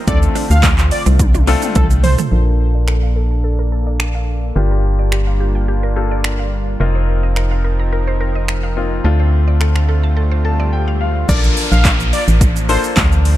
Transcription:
Already playing: C4
0.07 D2 D3 A3 C4 D4 F4 A4 D5, kick, closed hi-hat, shaker
0.23 shaker
0.35 D4, open hi-hat, shaker
0.50 D2 F5, muted clean electric guitar stroke, shaker
0.63 A3, kick, snare, clap, closed hi-hat, shaker
0.78 muted clean electric guitar stroke, clap, shaker
0.91 D5, open hi-hat, shaker
1.06 C2 C4, shaker
1.19 muted clean electric guitar stroke, kick, closed hi-hat, high tom, shaker
1.34 D4, high tom, shaker
1.47 A3 C4 D4 F4 A4, open hi-hat, shaker
1.62 mid tom, shaker
1.75 C2 C4 A4, kick, closed hi-hat, mid tom, shaker
1.90 muted clean electric guitar stroke, shaker
2.03 C5, floor tom, open hi-hat, shaker
2.18 A3, floor tom, shaker
2.31 A#1 A#3 D4 F4 A4
2.47 A#4
2.75 D5
2.88 A4, finger snap
3.03 F5
3.16 A4
3.31 A5
3.44 A4
3.59 A#4
3.72 A4
3.87 D5
4.00 finger snap
4.15 F5
4.55 G1 G3 A#3 D4 F4 G4
4.71 A#4
4.99 D5
5.12 G4, finger snap
5.27 F5
5.40 G4
5.55 G5
5.68 G4
5.83 A#4
5.96 A#3 D4 F4 G4 A4
6.11 D5
6.24 finger snap
6.39 F5
6.80 F1 F3 A#3 C4 D#4 F4 A#4, swell
6.95 C5
7.23 D#5
7.36 A#4, finger snap
7.51 F5
7.64 A#4
7.79 A#5
7.92 A#4
8.07 C5
8.21 A#4
8.35 D#5
8.48 finger snap
8.63 F5
8.76 A#3 C4 D#4 F4
9.04 D2 D3 A3 C4 D4 F4 A4
9.19 C5
9.48 D5
9.61 A4, finger snap
9.76 F5, finger snap
9.89 A4
10.03 A5
10.17 A4
10.31 C5
10.45 A4 A5
10.60 D5
10.73 G5
10.88 F5
11.01 F5
11.28 A#1 A#3 D4 F4 A4 A#4 D5, kick, closed hi-hat, crash, downlifter, shaker
11.44 shaker
11.57 open hi-hat, shaker
11.72 A#1 F5, shaker
11.84 kick, snare, clap, closed hi-hat, shaker
12.00 shaker
12.13 D5, open hi-hat, shaker
12.28 A1, shaker
12.41 kick, closed hi-hat, shaker
12.56 shaker
12.69 A#3 D4 F4 A4 C5, open hi-hat, shaker
12.84 shaker
12.96 D2, kick, snare, clap, closed hi-hat, shaker
13.12 shaker
13.25 open hi-hat, shaker

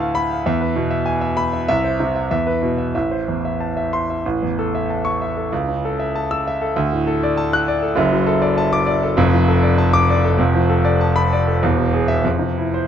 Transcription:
Already playing: D2 A2 B4 A5
0.00 F5
0.15 B5
0.31 F5
0.46 E2 E5
0.61 B4
0.76 B2
0.91 E5
1.06 G#5
1.21 E5
1.37 B5
1.53 E5
1.68 C2 E5
1.84 C5
2.00 C3
2.16 E5
2.31 E2 E5
2.47 B4
2.63 B2
2.78 E5
2.95 A1 E5
3.11 C5
3.28 E2
3.45 E5
3.60 A5
3.77 E5
3.93 C6
4.10 E5
4.26 A1
4.43 E2
4.59 A4
4.75 E5
4.90 A5
5.05 C#6
5.22 E5
5.37 A4
5.52 C#2
5.69 C#3
5.85 A4
6.00 E5
6.15 A5
6.31 E6
6.47 E5
6.62 A4
6.76 D2
6.93 A2
7.07 A4
7.23 D5
7.37 A5
7.53 F#6
7.68 D5
7.82 A4
7.96 F#1 F#2
8.12 F#3
8.27 A4
8.42 D5
8.58 A5
8.73 D6
8.87 D5
9.03 A4
9.17 F1 F2
9.33 F3
9.48 A4
9.63 D5
9.78 A5
9.93 D6
10.10 D5
10.24 A4
10.38 F1 F2
10.54 F3
10.70 A4
10.85 D5
11.01 A5
11.16 B5
11.33 D5
11.47 A4
11.62 E1 E2
11.78 B2
11.93 G#4
12.08 E5
12.24 F2
12.39 C3
12.57 E4
12.74 C5

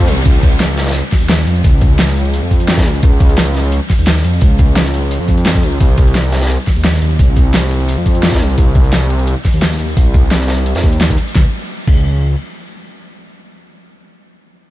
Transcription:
0.00 kick, cabasa
0.08 C2, closed hi-hat, cabasa
0.17 closed hi-hat
0.26 C#2, kick, closed hi-hat
0.43 kick, closed hi-hat
0.52 closed hi-hat
0.60 snare, closed hi-hat
0.77 snare, closed hi-hat
0.86 snare, closed hi-hat
0.91 snare, closed hi-hat
0.95 closed hi-hat
1.12 kick, snare, closed hi-hat, open hi-hat
1.21 D#2, closed hi-hat
1.29 snare, closed hi-hat
1.39 snare
1.47 F2, closed hi-hat
1.56 closed hi-hat
1.64 C#2, kick, closed hi-hat
1.81 kick, closed hi-hat
1.99 snare, closed hi-hat
2.07 snare
2.16 closed hi-hat
2.25 closed hi-hat
2.34 closed hi-hat
2.43 F2
2.51 kick, closed hi-hat
2.60 closed hi-hat
2.68 snare, closed hi-hat
2.73 snare, closed hi-hat
2.77 kick, snare, closed hi-hat
2.81 snare, closed hi-hat
2.86 C#2, closed hi-hat
2.95 closed hi-hat
3.03 C#2, kick, closed hi-hat
3.20 kick, closed hi-hat
3.29 closed hi-hat
3.37 snare, closed hi-hat
3.54 snare, closed hi-hat
3.64 closed hi-hat
3.72 closed hi-hat
3.90 kick, snare, closed hi-hat, open hi-hat
3.99 D#2, closed hi-hat
4.07 snare, closed hi-hat
4.16 snare
4.24 F2, closed hi-hat
4.34 closed hi-hat
4.41 C#2, kick, closed hi-hat
4.58 kick, closed hi-hat
4.76 snare, closed hi-hat
4.85 snare
4.94 closed hi-hat
5.03 closed hi-hat
5.11 closed hi-hat
5.20 F2
5.28 kick, closed hi-hat
5.38 closed hi-hat
5.46 snare, closed hi-hat
5.55 kick, snare
5.63 C#2, closed hi-hat
5.72 closed hi-hat
5.80 C2, kick, closed hi-hat
5.97 kick, closed hi-hat
6.08 closed hi-hat
6.15 snare, closed hi-hat
6.32 snare, closed hi-hat
6.41 snare, closed hi-hat
6.45 snare, closed hi-hat
6.50 closed hi-hat
6.67 kick, snare, closed hi-hat, open hi-hat
6.76 D#2, closed hi-hat
6.84 snare, closed hi-hat
6.94 snare
7.02 D#2, closed hi-hat
7.11 closed hi-hat
7.19 C2, kick, closed hi-hat
7.36 kick, closed hi-hat
7.54 snare, closed hi-hat
7.63 snare
7.71 closed hi-hat
7.80 closed hi-hat
7.88 closed hi-hat
7.98 F2
8.06 kick, closed hi-hat
8.15 closed hi-hat
8.23 snare, closed hi-hat
8.28 snare, closed hi-hat
8.32 kick, snare, closed hi-hat
8.36 snare, closed hi-hat
8.40 C2, closed hi-hat
8.50 closed hi-hat
8.58 C2, kick, closed hi-hat
8.75 kick, closed hi-hat
8.84 closed hi-hat
8.92 snare, closed hi-hat
9.10 closed hi-hat
9.19 closed hi-hat
9.27 closed hi-hat
9.45 kick, snare, closed hi-hat, open hi-hat
9.54 D#2, closed hi-hat
9.62 snare, closed hi-hat
9.71 snare
9.79 D#2, closed hi-hat
9.89 closed hi-hat
9.97 C2, kick, closed hi-hat
10.14 kick, closed hi-hat
10.31 snare, closed hi-hat
10.41 snare
10.48 snare, closed hi-hat
10.58 closed hi-hat
10.66 closed hi-hat
10.75 F2, snare, closed hi-hat
10.83 D#2, kick, snare, closed hi-hat
10.92 closed hi-hat
11.01 snare, closed hi-hat
11.09 kick, snare
11.18 closed hi-hat
11.27 closed hi-hat
11.35 C#2, kick, snare
11.87 C#2, kick, crash

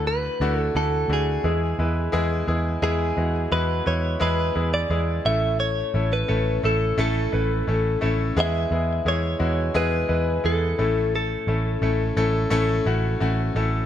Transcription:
Already playing: D2 D3 A3 D4 E4 F#4
0.07 B4
0.40 D2 A3 D4 E4 F#4
0.60 A4
0.75 D2 A3 D4 E4 F#4 A4
1.08 D2 A3 D4 E4 F#4
1.13 G#4
1.44 E2 E3 G#3 B3 E4 G#4
1.79 E2 G#3 B3 E4 B4
2.12 E2 G#3 B3 E4 G#4
2.47 E2 G#3 B3 E4 G#4
2.82 E2 E3 G#3 B3 E4 G#4
3.17 E2 G#3 B3 E4 F#4
3.51 E2 G#3 B3 E4 F#4 B4
3.85 E2 G#3 B3 E4 B4 C#5
4.20 E2 G#3 B3 E4 G#4 B4
4.55 E2 G#3 B3 E4 G#4
4.74 D5
4.90 E2 G#3 B3 E4 G#4
5.25 A1 A2 A3 C#4 E4 A4 E5
5.60 C#5
5.94 A1 A3 C#4 E4 A4
6.13 B4
6.28 A1 A3 C#4 E4 A4
6.63 A1 A3 C#4 E4 A4
6.98 A1 A3 C#4 E4 A4
7.32 A1 A3 C#4 E4 B4
7.67 A1 A3 C#4 E4 A4
8.01 A1 A3 C#4 E4 A4
8.37 E2 E3 G#3 B3 E4 G#4 E5
8.71 E2 G#3 B3 E4 G#4
9.05 E2 G#3 B3 E4 G#4 C#5
9.39 E2 G#3 B3 E4 F#4
9.74 E2 G#3 B3 E4 G#4 B4
10.08 E2 G#3 B3 E4 B4
10.44 E2 G#3 B3 E4 G#4 A4
10.78 A1 A2 A3 C#4 E4 A4
11.16 A4
11.47 A1 A3 C#4 E4 A4
11.82 A1 A3 C#4 E4 A4
12.17 A1 A3 C#4 E4 A4
12.50 A1 A3 C#4 E4 A4
12.86 A1 A3 C#4 E4 F#4
13.20 A1 A3 C#4 E4 F#4
13.55 A1 A3 C#4 E4 A4

